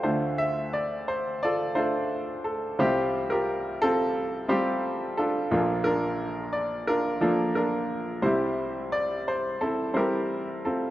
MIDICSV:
0, 0, Header, 1, 2, 480
1, 0, Start_track
1, 0, Tempo, 683371
1, 25, Time_signature, 4, 2, 24, 8
1, 7660, End_track
2, 0, Start_track
2, 0, Title_t, "Grand piano"
2, 0, Program_c, 0, 0
2, 0, Control_c, 0, 64, 127
2, 0, Note_on_c, 0, 69, 46
2, 23, Note_on_c, 0, 38, 51
2, 23, Note_on_c, 0, 72, 64
2, 24, Note_on_c, 0, 57, 54
2, 24, Note_on_c, 0, 62, 47
2, 25, Note_on_c, 0, 65, 49
2, 27, Note_on_c, 0, 50, 49
2, 35, Control_c, 0, 64, 0
2, 161, Control_c, 0, 64, 127
2, 269, Note_on_c, 0, 76, 81
2, 495, Note_off_c, 0, 76, 0
2, 515, Note_on_c, 0, 74, 70
2, 736, Note_off_c, 0, 69, 0
2, 749, Note_off_c, 0, 72, 0
2, 759, Note_on_c, 0, 72, 74
2, 764, Note_off_c, 0, 74, 0
2, 927, Note_off_c, 0, 57, 0
2, 927, Note_off_c, 0, 62, 0
2, 928, Note_off_c, 0, 65, 0
2, 1003, Note_on_c, 0, 74, 80
2, 1006, Note_off_c, 0, 72, 0
2, 1016, Note_on_c, 0, 65, 64
2, 1016, Note_on_c, 0, 69, 59
2, 1221, Note_off_c, 0, 65, 0
2, 1230, Note_on_c, 0, 62, 53
2, 1230, Note_on_c, 0, 72, 70
2, 1232, Note_on_c, 0, 65, 53
2, 1233, Note_on_c, 0, 57, 51
2, 1242, Note_off_c, 0, 69, 0
2, 1248, Note_off_c, 0, 74, 0
2, 1252, Note_on_c, 0, 69, 53
2, 1706, Note_off_c, 0, 69, 0
2, 1716, Note_on_c, 0, 69, 66
2, 1904, Note_off_c, 0, 62, 0
2, 1905, Note_off_c, 0, 65, 0
2, 1905, Note_off_c, 0, 72, 0
2, 1906, Note_off_c, 0, 57, 0
2, 1931, Note_off_c, 0, 38, 0
2, 1933, Note_off_c, 0, 50, 0
2, 1958, Note_on_c, 0, 48, 55
2, 1958, Note_on_c, 0, 65, 51
2, 1959, Note_on_c, 0, 36, 51
2, 1961, Note_on_c, 0, 55, 59
2, 1961, Note_on_c, 0, 60, 57
2, 1961, Note_on_c, 0, 72, 66
2, 1965, Note_off_c, 0, 69, 0
2, 1965, Note_on_c, 0, 67, 77
2, 1968, Control_c, 0, 64, 0
2, 2083, Control_c, 0, 64, 127
2, 2317, Note_on_c, 0, 70, 68
2, 2320, Note_off_c, 0, 65, 0
2, 2321, Note_off_c, 0, 67, 0
2, 2331, Note_on_c, 0, 65, 49
2, 2332, Note_on_c, 0, 67, 54
2, 2681, Note_on_c, 0, 69, 101
2, 2683, Note_off_c, 0, 65, 0
2, 2684, Note_off_c, 0, 60, 0
2, 2685, Note_off_c, 0, 70, 0
2, 2694, Note_on_c, 0, 65, 57
2, 2695, Note_on_c, 0, 60, 62
2, 2845, Note_off_c, 0, 55, 0
2, 2845, Note_off_c, 0, 72, 0
2, 3139, Note_off_c, 0, 60, 0
2, 3142, Note_off_c, 0, 65, 0
2, 3145, Note_off_c, 0, 67, 0
2, 3150, Note_on_c, 0, 60, 60
2, 3152, Note_on_c, 0, 55, 65
2, 3152, Note_on_c, 0, 65, 53
2, 3153, Note_on_c, 0, 72, 67
2, 3156, Note_on_c, 0, 67, 77
2, 3170, Note_off_c, 0, 69, 0
2, 3603, Note_off_c, 0, 67, 0
2, 3635, Note_off_c, 0, 65, 0
2, 3635, Note_on_c, 0, 69, 71
2, 3645, Note_on_c, 0, 62, 49
2, 3645, Note_on_c, 0, 65, 55
2, 3816, Note_off_c, 0, 60, 0
2, 3817, Note_off_c, 0, 55, 0
2, 3818, Note_off_c, 0, 72, 0
2, 3840, Note_off_c, 0, 48, 0
2, 3841, Note_off_c, 0, 36, 0
2, 3862, Note_off_c, 0, 65, 0
2, 3864, Note_off_c, 0, 62, 0
2, 3872, Note_on_c, 0, 46, 58
2, 3872, Note_on_c, 0, 53, 59
2, 3873, Note_on_c, 0, 65, 69
2, 3874, Note_on_c, 0, 58, 60
2, 3875, Note_on_c, 0, 34, 54
2, 3875, Note_on_c, 0, 62, 54
2, 3876, Control_c, 0, 64, 0
2, 4013, Control_c, 0, 64, 127
2, 4082, Note_off_c, 0, 69, 0
2, 4102, Note_on_c, 0, 70, 82
2, 4103, Note_off_c, 0, 65, 0
2, 4105, Note_off_c, 0, 62, 0
2, 4114, Note_on_c, 0, 65, 51
2, 4115, Note_on_c, 0, 62, 58
2, 4584, Note_on_c, 0, 74, 74
2, 4596, Note_off_c, 0, 70, 0
2, 4756, Note_off_c, 0, 53, 0
2, 4757, Note_off_c, 0, 58, 0
2, 4826, Note_off_c, 0, 62, 0
2, 4828, Note_off_c, 0, 65, 0
2, 4828, Note_on_c, 0, 70, 81
2, 4830, Note_off_c, 0, 74, 0
2, 4837, Note_on_c, 0, 62, 53
2, 4838, Note_on_c, 0, 65, 55
2, 5055, Note_off_c, 0, 62, 0
2, 5057, Note_off_c, 0, 65, 0
2, 5062, Note_on_c, 0, 53, 61
2, 5065, Note_on_c, 0, 58, 57
2, 5066, Note_on_c, 0, 62, 54
2, 5067, Note_on_c, 0, 65, 66
2, 5067, Note_on_c, 0, 69, 63
2, 5071, Note_off_c, 0, 70, 0
2, 5301, Note_off_c, 0, 62, 0
2, 5302, Note_off_c, 0, 65, 0
2, 5305, Note_on_c, 0, 70, 70
2, 5310, Note_off_c, 0, 69, 0
2, 5312, Note_on_c, 0, 62, 50
2, 5313, Note_on_c, 0, 65, 51
2, 5726, Note_off_c, 0, 53, 0
2, 5728, Note_off_c, 0, 58, 0
2, 5751, Note_off_c, 0, 46, 0
2, 5752, Note_off_c, 0, 34, 0
2, 5755, Note_off_c, 0, 62, 0
2, 5756, Note_off_c, 0, 65, 0
2, 5774, Note_on_c, 0, 36, 50
2, 5775, Note_on_c, 0, 55, 56
2, 5775, Note_on_c, 0, 64, 55
2, 5776, Note_on_c, 0, 60, 53
2, 5776, Note_on_c, 0, 72, 67
2, 5778, Note_on_c, 0, 48, 50
2, 5786, Control_c, 0, 64, 0
2, 5789, Note_off_c, 0, 64, 0
2, 5795, Note_off_c, 0, 70, 0
2, 5799, Note_on_c, 0, 67, 54
2, 5800, Note_on_c, 0, 64, 57
2, 5924, Control_c, 0, 64, 127
2, 6267, Note_on_c, 0, 74, 79
2, 6507, Note_off_c, 0, 72, 0
2, 6509, Note_off_c, 0, 74, 0
2, 6518, Note_on_c, 0, 72, 74
2, 6667, Note_off_c, 0, 55, 0
2, 6668, Note_off_c, 0, 60, 0
2, 6721, Note_off_c, 0, 64, 0
2, 6721, Note_off_c, 0, 67, 0
2, 6750, Note_on_c, 0, 69, 70
2, 6754, Note_on_c, 0, 60, 52
2, 6754, Note_on_c, 0, 64, 49
2, 6755, Note_off_c, 0, 72, 0
2, 6971, Note_off_c, 0, 60, 0
2, 6972, Note_off_c, 0, 64, 0
2, 6979, Note_on_c, 0, 55, 56
2, 6982, Note_on_c, 0, 60, 50
2, 6982, Note_on_c, 0, 72, 60
2, 6983, Note_on_c, 0, 64, 54
2, 6993, Note_off_c, 0, 69, 0
2, 7000, Note_on_c, 0, 70, 64
2, 7004, Note_on_c, 0, 67, 50
2, 7477, Note_off_c, 0, 60, 0
2, 7481, Note_on_c, 0, 69, 59
2, 7487, Note_on_c, 0, 65, 45
2, 7488, Note_on_c, 0, 60, 50
2, 7490, Note_off_c, 0, 70, 0
2, 7655, Note_off_c, 0, 55, 0
2, 7657, Note_off_c, 0, 64, 0
2, 7657, Note_off_c, 0, 72, 0
2, 7660, Note_off_c, 0, 36, 0
2, 7660, Note_off_c, 0, 48, 0
2, 7660, Note_off_c, 0, 60, 0
2, 7660, Note_off_c, 0, 65, 0
2, 7660, Note_off_c, 0, 67, 0
2, 7660, Note_off_c, 0, 69, 0
2, 7660, End_track
0, 0, End_of_file